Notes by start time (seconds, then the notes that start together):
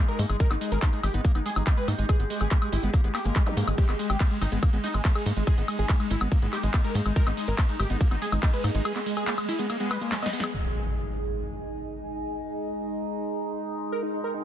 Already playing: G#3 D#4
0.08 G#3 A#4, closed hi-hat, cabasa
0.19 G#2 G#3 A#3, open hi-hat
0.29 G#1 G#3, closed hi-hat, cabasa, high woodblock
0.40 G#3 G4 A#4, kick, closed hi-hat, cabasa
0.51 G#1 B3 D#4, clap, closed hi-hat, cabasa, high woodblock
0.61 G#3 D#4, open hi-hat
0.72 G#1 G#3 A#4, closed hi-hat, cabasa
0.82 A#3 D#4, kick, clap, closed hi-hat, cabasa, high woodblock
0.93 G#3 D#4, closed hi-hat, cabasa
1.03 G#1 G#3 G4, open hi-hat, high woodblock
1.14 G#1 B3 D#4, closed hi-hat, cabasa
1.25 A#3, kick, closed hi-hat, cabasa
1.35 G#1 B3 D#4, closed hi-hat, cabasa, high woodblock
1.46 G#3 G#4, open hi-hat
1.56 G#1 G#3 D#4, closed hi-hat, cabasa, high woodblock
1.67 A#3 D#4, kick, clap, closed hi-hat, cabasa
1.77 G#3 B4, closed hi-hat, cabasa
1.88 G#2 A#3 D#4, open hi-hat, high woodblock
1.98 G#1 G#3 D#4, closed hi-hat, cabasa
2.09 G#3 G#4, kick, closed hi-hat, cabasa, high woodblock
2.19 G#1 G#3 B3, closed hi-hat, cabasa
2.30 G#3, open hi-hat
2.40 G#1 G#3 G#4, closed hi-hat, cabasa, high woodblock
2.51 G#3 A#3, kick, clap, closed hi-hat, cabasa
2.62 G#3, closed hi-hat, cabasa, high woodblock
2.72 G#1 G#3 E4, open hi-hat
2.83 G#1 G#3 B3, closed hi-hat, cabasa
2.93 A#3, kick, closed hi-hat, cabasa, high woodblock
3.04 G#1 G#3 B3, closed hi-hat, cabasa
3.15 A#3 G4, clap, open hi-hat, high woodblock
3.25 G#1 G#3 A#3, closed hi-hat, cabasa
3.36 G#3, kick, clap, closed hi-hat, cabasa
3.46 G3 D#4, closed hi-hat, zap, cabasa, high woodblock
3.57 G#2 G#3 A#3, open hi-hat
3.67 G#1 G#3, closed hi-hat, cabasa, high woodblock
3.78 G#3 D#4 G4, kick, closed hi-hat, ride, cabasa
3.89 G#1 G#3 B3, clap, closed hi-hat, cabasa, high woodblock
3.99 G#3, open hi-hat
4.10 G#1 G#3 G4, closed hi-hat, cabasa, high woodblock
4.20 G#3 A#3, kick, clap, closed hi-hat, ride, cabasa
4.31 G#3, closed hi-hat, cabasa
4.41 G#1 G#3 D#4, open hi-hat, high woodblock
4.52 G#1 G#3 B3, closed hi-hat, cabasa
4.62 A#3, kick, closed hi-hat, ride, cabasa, high woodblock
4.73 G#1 G#3 B3, closed hi-hat, cabasa
4.84 G#3 D#4, open hi-hat
4.94 G#1 G#3, closed hi-hat, cabasa, high woodblock
5.04 G#3 A#3, kick, clap, closed hi-hat, ride, cabasa
5.15 G#3 G#4, closed hi-hat, cabasa, high woodblock
5.26 G#2 G#3 A#3, open hi-hat
5.36 G#1 G#3, closed hi-hat, cabasa
5.47 G#3 G#4, kick, closed hi-hat, ride, cabasa, high woodblock
5.58 G#1 G#3 B3, closed hi-hat, cabasa
5.68 G#3, open hi-hat, high woodblock
5.79 G#1 G#3 G#4, closed hi-hat, cabasa
5.89 G#3 A#3, kick, clap, closed hi-hat, ride, cabasa
6.00 G#3, closed hi-hat, cabasa, high woodblock
6.10 G#1 G#3 E4, open hi-hat
6.21 G#1 G#3 B3, closed hi-hat, cabasa, high woodblock
6.31 A#3, kick, closed hi-hat, ride, cabasa
6.42 G#1 G#3 B3, closed hi-hat, cabasa
6.53 G#3 G4, clap, open hi-hat, high woodblock
6.63 G#1 G#3, closed hi-hat, cabasa
6.74 G#3 A#3, kick, clap, closed hi-hat, ride, cabasa, high woodblock
6.84 G#3 A#4, closed hi-hat, cabasa
6.95 G#2 G#3 A#3, open hi-hat
7.06 G#1 G#3, closed hi-hat, cabasa, high woodblock
7.16 G#3 G#4 A#4, kick, closed hi-hat, ride, cabasa
7.27 G#1 B3 D#4, clap, closed hi-hat, cabasa, high woodblock
7.37 G#3 D#4, open hi-hat
7.48 G#1 G#3 A#4, closed hi-hat, cabasa
7.58 A#3 D#4, kick, clap, closed hi-hat, ride, cabasa, high woodblock
7.69 G#3 D#4, closed hi-hat, cabasa
7.79 G#1 G#3 G4, open hi-hat, high woodblock
7.90 G#1 B3 D#4, closed hi-hat, cabasa
8.01 A#3, kick, closed hi-hat, ride, cabasa
8.11 G#1 B3 D#4, closed hi-hat, cabasa, high woodblock
8.22 G#3 G#4, open hi-hat
8.32 G#1 G#3 D#4, closed hi-hat, cabasa, high woodblock
8.42 A#3 D#4, kick, clap, closed hi-hat, ride, cabasa
8.53 G#3 B4, closed hi-hat, cabasa
8.64 G#2 A#3 D#4, open hi-hat, high woodblock
8.74 G#1 G#3 D#4, closed hi-hat, cabasa
8.85 G#3 G#4, closed hi-hat, ride, cabasa, high woodblock
8.96 G#3 B3, clap, closed hi-hat, cabasa
9.06 G#3, open hi-hat
9.17 G#3 G#4, closed hi-hat, cabasa, high woodblock
9.27 G#3 A#3, clap, closed hi-hat, ride, cabasa
9.37 G#3, open hi-hat, cabasa, high woodblock
9.48 G#3 E4, open hi-hat
9.58 G#3 B3, closed hi-hat, cabasa
9.70 A#3, closed hi-hat, ride, cabasa, high woodblock
9.80 G#3 B3, closed hi-hat, cabasa
9.91 G3 B4, clap, open hi-hat, high woodblock
10.01 G#3 A#3, closed hi-hat, cabasa
10.12 G#3 A#3, snare, clap, closed hi-hat, ride, cabasa
10.22 B3 D#5, snare, closed hi-hat, cabasa, high woodblock
10.33 G#3 B3, open hi-hat
10.40 G#3 B3, snare, closed hi-hat, cabasa, high woodblock
10.54 G#3 D#4, impact
10.66 G#4
11.01 G#5
11.17 D#5
13.92 A#4 G5, riser
14.03 D#4
14.13 D#4
14.24 A#4
14.34 D#4